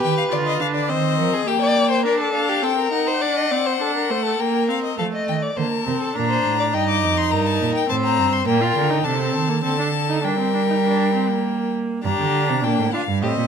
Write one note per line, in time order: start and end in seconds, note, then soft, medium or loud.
0.00 0.11 D#3 medium
0.00 0.30 G4 medium
0.00 0.91 B4 medium
0.00 0.17 G5 medium
0.17 0.23 F5 medium
0.32 0.60 D3 medium
0.32 0.62 F4 medium
0.32 0.37 D5 medium
0.46 0.60 D#5 medium
0.60 0.91 D3 medium
0.60 0.91 D4 medium
0.60 0.66 F5 medium
0.75 0.91 D5 medium
0.89 1.18 D#3 medium
0.89 1.46 C4 medium
0.89 1.18 C5 medium
0.89 1.49 D#5 loud
1.19 1.27 F3 medium
1.19 1.35 A#4 medium
1.33 1.49 G#4 medium
1.47 2.06 A#3 medium
1.47 1.61 G4 loud
1.47 2.05 G5 medium
1.62 1.90 D5 loud
1.91 2.05 C5 medium
2.05 2.33 D4 medium
2.05 2.20 A#4 medium
2.05 2.34 D5 medium
2.21 2.51 A4 medium
2.33 2.64 D4 medium
2.33 2.65 F5 medium
2.49 2.65 G4 medium
2.63 2.91 C4 medium
2.63 2.77 A4 medium
2.63 2.92 G5 medium
2.78 3.09 A#4 medium
2.92 3.23 D#4 medium
2.92 4.41 F#5 medium
3.07 3.23 C5 medium
3.22 3.53 D4 medium
3.22 3.38 D5 medium
3.37 3.53 D#5 medium
3.51 3.80 C4 medium
3.51 3.68 D5 medium
3.67 3.83 C5 medium
3.81 4.12 D4 medium
3.81 3.95 A4 medium
3.96 4.12 A#4 medium
4.10 4.39 A3 medium
4.10 4.25 C5 medium
4.25 4.42 A4 medium
4.40 4.71 A#3 medium
4.40 4.98 A#4 medium
4.40 4.69 G5 medium
4.69 4.98 C4 medium
4.69 4.83 F5 medium
4.83 4.98 D#5 medium
4.98 5.06 F3 medium
4.98 5.53 A3 medium
4.98 5.04 A4 medium
4.98 5.06 F5 medium
5.13 5.44 D#5 medium
5.28 5.36 D#3 medium
5.28 5.36 G5 medium
5.42 5.59 D5 medium
5.57 5.65 D3 medium
5.57 5.86 A#3 medium
5.57 5.71 C5 medium
5.57 6.15 A5 medium
5.72 6.03 A#4 medium
5.87 5.95 C3 medium
5.87 6.15 C4 medium
6.01 6.17 A4 medium
6.16 6.44 A#2 medium
6.16 6.75 D4 medium
6.16 6.30 A#4 medium
6.16 6.75 A#5 medium
6.30 6.59 C5 medium
6.45 6.75 A2 medium
6.60 6.66 D5 medium
6.74 7.05 G2 medium
6.74 7.89 D#4 medium
6.74 7.31 D#5 medium
6.74 6.88 G5 medium
6.88 7.19 D6 medium
7.03 7.34 F2 medium
7.17 7.33 C6 medium
7.31 7.61 G2 medium
7.31 7.91 A#4 medium
7.31 7.48 A#5 medium
7.46 7.74 A5 medium
7.61 7.69 A#2 medium
7.75 7.89 G5 medium
7.89 8.20 A2 medium
7.89 8.46 C4 medium
7.89 8.48 C5 medium
7.89 7.95 A5 medium
8.04 8.34 A#5 medium
8.19 8.47 G2 medium
8.32 8.47 C6 medium
8.47 8.76 A#2 medium
8.47 8.63 A#3 medium
8.47 9.04 A#4 medium
8.47 9.06 G5 medium
8.61 8.92 F4 medium
8.76 9.04 D3 medium
8.90 9.06 D#4 medium
9.04 9.36 C3 medium
9.04 9.18 D4 medium
9.04 9.63 A4 medium
9.04 9.63 A5 medium
9.19 9.50 C4 medium
9.35 9.64 D#3 medium
9.48 9.63 A#3 medium
9.63 10.25 D3 medium
9.63 9.78 C4 medium
9.63 10.26 A4 medium
9.63 10.25 A5 medium
9.79 9.87 D4 medium
10.09 10.23 D#4 medium
10.24 11.74 G3 medium
10.24 10.39 D4 medium
10.24 11.74 A#4 medium
10.24 11.74 G5 medium
10.40 10.54 C4 medium
10.55 10.61 D4 medium
10.70 10.76 D#4 medium
10.85 11.14 D4 medium
11.15 11.32 C4 medium
11.30 12.04 A#3 medium
12.04 12.11 G2 medium
12.04 12.66 D4 medium
12.04 12.60 G4 medium
12.04 12.65 A#5 medium
12.20 12.51 D3 medium
12.49 12.65 C3 medium
12.63 12.78 A#2 medium
12.63 12.93 A#3 medium
12.63 12.92 D4 medium
12.63 12.95 G5 medium
12.79 12.87 A2 medium
12.93 13.02 D4 medium
12.93 13.01 F4 medium
12.93 13.22 F5 medium
13.08 13.24 G2 medium
13.22 13.37 A2 medium
13.22 13.47 C4 medium
13.22 13.31 G4 medium
13.22 13.47 D#5 medium
13.37 13.45 A#2 medium